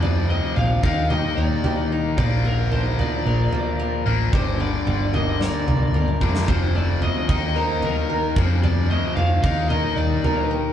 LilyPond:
<<
  \new Staff \with { instrumentName = "Lead electric guitar" } { \time 4/4 \key ees \lydian \tempo 4 = 112 d''8 ees''8 f''8 f''8 ees''8 d''4 r8 | d''8 bes'8 c''8 d''2 r8 | c''8 d''4 ees''8 d''4. r8 | c''8 d''8 ees''8 ees''8 c''8 bes'4 r8 |
d''8 ees''8 f''8 f''8 ees''8 d''4 r8 | }
  \new Staff \with { instrumentName = "Steel-string acoustic guitar" } { \time 4/4 \key ees \lydian f8 c'8 f8 ees8 g'8 bes8 g'8 ees'8 | bes,8 d8 f8 bes8 bes'8 bes8 bes'8 d'8 | g,8 d8 g8 bes8 bes'8 bes8 bes'8 d'8 | f8 a8 a8 ees8 bes'8 g8 bes'8 f8 |
f8 a8 a8 ees8 bes'8 g8 bes'8 g'8 | }
  \new Staff \with { instrumentName = "Overdriven electric guitar" } { \clef bass \time 4/4 \key ees \lydian <f, c f>4. <ees bes ees'>2~ <ees bes ees'>8 | <bes, f bes>2.~ <bes, f bes>8 <bes, f bes>8 | <g, d g>2.~ <g, d g>8 <g, d g>8 | <f, c f>4. <ees bes ees'>2 <f, c f>8~ |
<f, c f>4. <ees bes ees'>2~ <ees bes ees'>8 | }
  \new Staff \with { instrumentName = "Picked electric bass" } { \clef bass \time 4/4 \key ees \lydian f,4 bes,,8 ees,4 ees,8 r4 | bes,,2 bes,,8 r4 a,,8 | g,,4 g,,4. c,8 d,8 f,8 | f,,4. ees,2 f,8~ |
f,4 f,8 ees,4 ees,8 r4 | }
  \new DrumStaff \with { instrumentName = "Drums" } \drummode { \time 4/4 tomfh4 tomfh8 <bd tomfh>8 toml4 <tomfh toml>4 | <bd tomfh>4 tomfh8 tomfh8 r8 tomfh8 r4 | <bd tomfh>4 tomfh8 tomfh8 sn8 tomfh8 tommh16 toml16 bd16 sn16 | <bd tomfh>4 tomfh8 <bd tomfh>8 r8 tomfh8 r8 bd8 |
tomfh4 tomfh8 <bd tomfh>8 toml4 <tomfh toml>4 | }
>>